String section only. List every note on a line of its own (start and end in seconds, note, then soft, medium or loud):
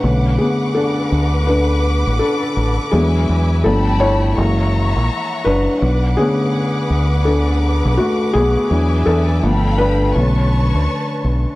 0.00 3.61 B4 medium
0.00 2.88 F#5 medium
0.00 3.61 D6 medium
2.93 3.64 E5 medium
2.93 3.64 G#5 medium
3.65 4.36 A4 medium
3.65 4.37 G5 medium
3.65 4.36 A5 medium
3.65 4.36 B5 medium
4.38 5.80 E5 medium
4.38 8.67 F#5 medium
4.38 5.80 A#5 medium
4.38 5.80 C#6 medium
5.82 9.40 B4 medium
5.82 9.40 D6 medium
8.71 9.42 E5 medium
8.71 9.42 G#5 medium
9.43 10.15 A4 medium
9.43 10.15 F5 medium
9.43 10.15 G5 medium
9.43 10.15 B5 medium
10.15 11.55 B4 medium
10.15 11.55 C#5 medium
10.15 11.55 A5 medium
10.15 11.55 C#6 medium